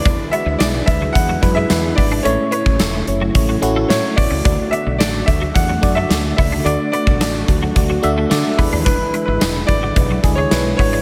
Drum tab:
HH |x-x-x-x-x-x-x-o-|x-x-x-x-x-x-x-o-|x-x-x-x-x-x-x-o-|x-x-x-x-x-x-x-o-|
TB |----x-------x---|----x-------x---|----x-------x---|----x-------x---|
SD |----o-------o---|----o-------o---|----o-------o---|----o-------o---|
BD |o-----o-o-o---o-|---o----o-----o-|o-----o-o-o---o-|---o--o-o-----o-|

HH |x-x-x-x-x-x-x-o-|
TB |----x-------x---|
SD |----o-------o---|
BD |o-----o-o-o---o-|